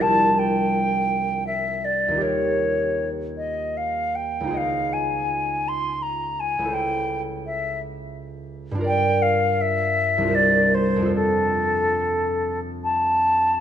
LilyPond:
<<
  \new Staff \with { instrumentName = "Flute" } { \time 3/4 \key f \major \tempo 4 = 80 a''8 g''4. e''8 d''8 | des''4. ees''8 f''8 g''8 | f''8 aes''4 c'''8 bes''8 aes''8 | g''8 r8 e''8 r4. |
g''8 f''8 e''4 d''8 c''8 | a'2 a''4 | }
  \new Staff \with { instrumentName = "Harp" } { \time 3/4 \key f \major <c, d' e' g' bes' c''>2. | <ees, ees' f' g' bes'>2. | <des, ees' f' aes' ees''>2. | <des, e' a' c''>2. |
<g, d' f' bes' d''>2 <c, d' f' bes' c''>4 | <f, d' f' a' c''>2. | }
>>